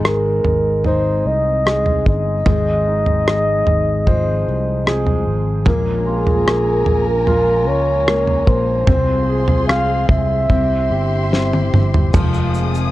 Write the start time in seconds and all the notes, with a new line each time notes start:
Already playing: G#1 G#2 D#3 G#3 C4 D#4 G#4
0.04 G#3 A#4, cross-stick
0.44 G#1, floor tom
0.84 G#3 C4 D#4 G#4 C5, floor tom
1.25 C2 D#5
1.65 G#3 C4 D#4 G#4, cross-stick
1.86 floor tom
2.06 G1 D#5, kick
2.46 G#1 G#2 D#3 F3 G#3 C4, kick, floor tom
2.50 G#4
2.88 D#4
3.06 floor tom
3.28 G#4, cross-stick
3.67 G#1, floor tom
4.07 F3 G#3 C4 G#4 C5, kick, floor tom
4.48 C2
4.86 F3 G#3 C4 G#4, cross-stick
5.07 floor tom
5.27 G#1
5.65 A#1 A#2 F3 G#3 A#3 C#4 A#4 G#5 A#5, kick, floor tom
5.69 G#4
6.06 F4 G#4
6.27 floor tom
6.47 A#3, cross-stick
6.86 A#1, floor tom
7.07 A#4
7.26 F3 G#3 C#4 F4 G#4, floor tom
7.67 C#2 C#5
8.07 F3 G#3 A#3 C#4 G#4, cross-stick
8.27 floor tom
8.47 A#1 C5, kick
8.87 C2 C3 F3 G#3 C4 F4 G#4 C6, kick, floor tom
9.29 G#4
9.48 floor tom
9.68 C4 F5, cross-stick
10.09 C2 E5, kick, floor tom
10.49 C2 G3 C4 E4 G4 E5 C6, kick, floor tom
10.90 G1 G4
11.31 G3 C4 E4 G4 C5, snare
11.53 high tom
11.74 G1, mid tom
11.94 floor tom
12.13 F2 C3 D#3 F3 G#3 C4 G#4 F5 D#6, kick, floor tom, crash, shaker
12.17 F4
12.34 shaker
12.54 shaker
12.74 shaker